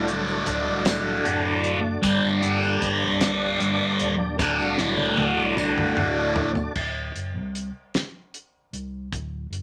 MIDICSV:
0, 0, Header, 1, 5, 480
1, 0, Start_track
1, 0, Tempo, 785340
1, 1249, Time_signature, 6, 3, 24, 8
1, 5882, End_track
2, 0, Start_track
2, 0, Title_t, "Tonewheel organ"
2, 0, Program_c, 0, 16
2, 0, Note_on_c, 0, 57, 66
2, 0, Note_on_c, 0, 62, 58
2, 0, Note_on_c, 0, 66, 63
2, 0, Note_on_c, 0, 74, 68
2, 1233, Note_off_c, 0, 66, 0
2, 1234, Note_off_c, 0, 57, 0
2, 1242, Note_on_c, 0, 67, 56
2, 1246, Note_on_c, 0, 58, 71
2, 2665, Note_off_c, 0, 74, 0
2, 2666, Note_off_c, 0, 62, 0
2, 2670, Note_off_c, 0, 67, 0
2, 2672, Note_off_c, 0, 58, 0
2, 2683, Note_on_c, 0, 66, 64
2, 2686, Note_on_c, 0, 57, 64
2, 2686, Note_on_c, 0, 62, 55
2, 2691, Note_on_c, 0, 74, 67
2, 4112, Note_off_c, 0, 66, 0
2, 4114, Note_off_c, 0, 57, 0
2, 4114, Note_off_c, 0, 62, 0
2, 4116, Note_off_c, 0, 74, 0
2, 5882, End_track
3, 0, Start_track
3, 0, Title_t, "Distorted electric guitar"
3, 0, Program_c, 1, 30
3, 41, Note_on_c, 1, 50, 72
3, 44, Note_on_c, 1, 45, 69
3, 48, Note_on_c, 1, 38, 60
3, 273, Note_off_c, 1, 38, 0
3, 280, Note_off_c, 1, 45, 0
3, 280, Note_on_c, 1, 38, 61
3, 283, Note_off_c, 1, 50, 0
3, 287, Note_on_c, 1, 45, 68
3, 290, Note_on_c, 1, 50, 70
3, 514, Note_off_c, 1, 50, 0
3, 518, Note_off_c, 1, 45, 0
3, 520, Note_off_c, 1, 38, 0
3, 522, Note_on_c, 1, 50, 94
3, 526, Note_on_c, 1, 45, 75
3, 528, Note_on_c, 1, 38, 77
3, 755, Note_off_c, 1, 38, 0
3, 757, Note_off_c, 1, 45, 0
3, 761, Note_off_c, 1, 50, 0
3, 762, Note_on_c, 1, 38, 69
3, 764, Note_on_c, 1, 45, 66
3, 768, Note_on_c, 1, 50, 69
3, 1077, Note_off_c, 1, 38, 0
3, 1078, Note_off_c, 1, 45, 0
3, 1080, Note_off_c, 1, 50, 0
3, 1234, Note_on_c, 1, 43, 79
3, 1238, Note_on_c, 1, 50, 85
3, 1240, Note_on_c, 1, 55, 83
3, 1468, Note_off_c, 1, 55, 0
3, 1471, Note_off_c, 1, 50, 0
3, 1475, Note_off_c, 1, 43, 0
3, 1475, Note_on_c, 1, 55, 71
3, 1479, Note_on_c, 1, 50, 74
3, 1482, Note_on_c, 1, 43, 59
3, 1707, Note_off_c, 1, 43, 0
3, 1713, Note_off_c, 1, 50, 0
3, 1714, Note_on_c, 1, 43, 66
3, 1716, Note_off_c, 1, 55, 0
3, 1720, Note_on_c, 1, 50, 69
3, 1724, Note_on_c, 1, 55, 67
3, 1948, Note_off_c, 1, 55, 0
3, 1955, Note_off_c, 1, 50, 0
3, 1956, Note_on_c, 1, 55, 92
3, 1959, Note_off_c, 1, 43, 0
3, 1963, Note_on_c, 1, 50, 85
3, 1966, Note_on_c, 1, 43, 80
3, 2193, Note_off_c, 1, 43, 0
3, 2195, Note_off_c, 1, 50, 0
3, 2199, Note_off_c, 1, 55, 0
3, 2201, Note_on_c, 1, 43, 75
3, 2203, Note_on_c, 1, 50, 77
3, 2207, Note_on_c, 1, 55, 80
3, 2516, Note_off_c, 1, 43, 0
3, 2517, Note_off_c, 1, 50, 0
3, 2519, Note_off_c, 1, 55, 0
3, 2682, Note_on_c, 1, 38, 79
3, 2686, Note_on_c, 1, 45, 77
3, 2690, Note_on_c, 1, 50, 77
3, 2914, Note_off_c, 1, 50, 0
3, 2920, Note_off_c, 1, 45, 0
3, 2921, Note_off_c, 1, 38, 0
3, 2921, Note_on_c, 1, 50, 79
3, 2927, Note_on_c, 1, 45, 73
3, 2929, Note_on_c, 1, 38, 64
3, 3156, Note_off_c, 1, 38, 0
3, 3161, Note_off_c, 1, 45, 0
3, 3163, Note_on_c, 1, 38, 62
3, 3165, Note_off_c, 1, 50, 0
3, 3168, Note_on_c, 1, 45, 59
3, 3173, Note_on_c, 1, 50, 77
3, 3397, Note_off_c, 1, 50, 0
3, 3401, Note_off_c, 1, 45, 0
3, 3404, Note_off_c, 1, 38, 0
3, 3404, Note_on_c, 1, 50, 88
3, 3409, Note_on_c, 1, 45, 78
3, 3411, Note_on_c, 1, 38, 76
3, 3638, Note_off_c, 1, 38, 0
3, 3639, Note_off_c, 1, 45, 0
3, 3643, Note_off_c, 1, 50, 0
3, 3645, Note_on_c, 1, 38, 67
3, 3647, Note_on_c, 1, 45, 75
3, 3651, Note_on_c, 1, 50, 78
3, 3959, Note_off_c, 1, 38, 0
3, 3960, Note_off_c, 1, 45, 0
3, 3962, Note_off_c, 1, 50, 0
3, 5882, End_track
4, 0, Start_track
4, 0, Title_t, "Fingered electric bass"
4, 0, Program_c, 2, 33
4, 0, Note_on_c, 2, 36, 72
4, 246, Note_off_c, 2, 36, 0
4, 284, Note_on_c, 2, 26, 87
4, 393, Note_off_c, 2, 26, 0
4, 398, Note_on_c, 2, 36, 72
4, 722, Note_off_c, 2, 36, 0
4, 765, Note_on_c, 2, 30, 76
4, 1192, Note_off_c, 2, 30, 0
4, 1242, Note_on_c, 2, 31, 102
4, 1351, Note_off_c, 2, 31, 0
4, 1372, Note_on_c, 2, 31, 76
4, 1689, Note_off_c, 2, 31, 0
4, 1721, Note_on_c, 2, 31, 93
4, 1851, Note_on_c, 2, 36, 82
4, 1860, Note_off_c, 2, 31, 0
4, 2169, Note_off_c, 2, 36, 0
4, 2206, Note_on_c, 2, 43, 88
4, 2313, Note_off_c, 2, 43, 0
4, 2452, Note_on_c, 2, 27, 87
4, 2686, Note_off_c, 2, 27, 0
4, 2686, Note_on_c, 2, 26, 90
4, 2793, Note_off_c, 2, 26, 0
4, 2811, Note_on_c, 2, 36, 83
4, 3129, Note_off_c, 2, 36, 0
4, 3164, Note_on_c, 2, 26, 83
4, 3272, Note_off_c, 2, 26, 0
4, 3287, Note_on_c, 2, 36, 84
4, 3607, Note_off_c, 2, 36, 0
4, 3646, Note_on_c, 2, 26, 70
4, 4073, Note_off_c, 2, 26, 0
4, 4133, Note_on_c, 2, 26, 91
4, 4344, Note_off_c, 2, 26, 0
4, 4371, Note_on_c, 2, 30, 64
4, 4487, Note_on_c, 2, 36, 74
4, 4496, Note_off_c, 2, 30, 0
4, 4701, Note_off_c, 2, 36, 0
4, 5336, Note_on_c, 2, 36, 72
4, 5548, Note_off_c, 2, 36, 0
4, 5575, Note_on_c, 2, 26, 92
4, 5787, Note_off_c, 2, 26, 0
4, 5809, Note_on_c, 2, 30, 68
4, 5882, Note_off_c, 2, 30, 0
4, 5882, End_track
5, 0, Start_track
5, 0, Title_t, "Drums"
5, 48, Note_on_c, 9, 42, 63
5, 109, Note_off_c, 9, 42, 0
5, 170, Note_on_c, 9, 54, 32
5, 231, Note_off_c, 9, 54, 0
5, 283, Note_on_c, 9, 42, 68
5, 287, Note_on_c, 9, 36, 76
5, 296, Note_on_c, 9, 54, 30
5, 344, Note_off_c, 9, 42, 0
5, 348, Note_off_c, 9, 36, 0
5, 357, Note_off_c, 9, 54, 0
5, 521, Note_on_c, 9, 42, 79
5, 525, Note_on_c, 9, 38, 104
5, 530, Note_on_c, 9, 54, 92
5, 582, Note_off_c, 9, 42, 0
5, 586, Note_off_c, 9, 38, 0
5, 592, Note_off_c, 9, 54, 0
5, 766, Note_on_c, 9, 42, 68
5, 827, Note_off_c, 9, 42, 0
5, 1001, Note_on_c, 9, 42, 66
5, 1062, Note_off_c, 9, 42, 0
5, 1241, Note_on_c, 9, 42, 83
5, 1245, Note_on_c, 9, 36, 102
5, 1251, Note_on_c, 9, 54, 81
5, 1302, Note_off_c, 9, 42, 0
5, 1306, Note_off_c, 9, 36, 0
5, 1312, Note_off_c, 9, 54, 0
5, 1482, Note_on_c, 9, 42, 61
5, 1543, Note_off_c, 9, 42, 0
5, 1611, Note_on_c, 9, 54, 32
5, 1672, Note_off_c, 9, 54, 0
5, 1722, Note_on_c, 9, 42, 72
5, 1724, Note_on_c, 9, 36, 78
5, 1732, Note_on_c, 9, 54, 27
5, 1783, Note_off_c, 9, 42, 0
5, 1785, Note_off_c, 9, 36, 0
5, 1793, Note_off_c, 9, 54, 0
5, 1960, Note_on_c, 9, 42, 86
5, 1961, Note_on_c, 9, 54, 80
5, 1963, Note_on_c, 9, 38, 96
5, 2021, Note_off_c, 9, 42, 0
5, 2022, Note_off_c, 9, 54, 0
5, 2024, Note_off_c, 9, 38, 0
5, 2202, Note_on_c, 9, 42, 75
5, 2263, Note_off_c, 9, 42, 0
5, 2441, Note_on_c, 9, 42, 77
5, 2503, Note_off_c, 9, 42, 0
5, 2684, Note_on_c, 9, 38, 66
5, 2685, Note_on_c, 9, 36, 108
5, 2685, Note_on_c, 9, 54, 83
5, 2745, Note_off_c, 9, 38, 0
5, 2746, Note_off_c, 9, 36, 0
5, 2747, Note_off_c, 9, 54, 0
5, 2810, Note_on_c, 9, 54, 27
5, 2871, Note_off_c, 9, 54, 0
5, 2921, Note_on_c, 9, 38, 67
5, 2928, Note_on_c, 9, 54, 28
5, 2982, Note_off_c, 9, 38, 0
5, 2989, Note_off_c, 9, 54, 0
5, 3042, Note_on_c, 9, 48, 57
5, 3103, Note_off_c, 9, 48, 0
5, 3162, Note_on_c, 9, 48, 79
5, 3223, Note_off_c, 9, 48, 0
5, 3404, Note_on_c, 9, 47, 69
5, 3411, Note_on_c, 9, 54, 79
5, 3465, Note_off_c, 9, 47, 0
5, 3472, Note_off_c, 9, 54, 0
5, 3530, Note_on_c, 9, 45, 78
5, 3591, Note_off_c, 9, 45, 0
5, 3648, Note_on_c, 9, 45, 98
5, 3709, Note_off_c, 9, 45, 0
5, 3885, Note_on_c, 9, 43, 109
5, 3946, Note_off_c, 9, 43, 0
5, 4005, Note_on_c, 9, 43, 83
5, 4015, Note_on_c, 9, 54, 26
5, 4066, Note_off_c, 9, 43, 0
5, 4076, Note_off_c, 9, 54, 0
5, 4128, Note_on_c, 9, 49, 76
5, 4130, Note_on_c, 9, 36, 98
5, 4189, Note_off_c, 9, 49, 0
5, 4191, Note_off_c, 9, 36, 0
5, 4374, Note_on_c, 9, 42, 50
5, 4435, Note_off_c, 9, 42, 0
5, 4615, Note_on_c, 9, 42, 57
5, 4676, Note_off_c, 9, 42, 0
5, 4855, Note_on_c, 9, 42, 59
5, 4859, Note_on_c, 9, 38, 99
5, 4916, Note_off_c, 9, 42, 0
5, 4920, Note_off_c, 9, 38, 0
5, 5098, Note_on_c, 9, 42, 58
5, 5159, Note_off_c, 9, 42, 0
5, 5339, Note_on_c, 9, 42, 53
5, 5400, Note_off_c, 9, 42, 0
5, 5577, Note_on_c, 9, 36, 91
5, 5580, Note_on_c, 9, 42, 67
5, 5638, Note_off_c, 9, 36, 0
5, 5641, Note_off_c, 9, 42, 0
5, 5823, Note_on_c, 9, 42, 51
5, 5882, Note_off_c, 9, 42, 0
5, 5882, End_track
0, 0, End_of_file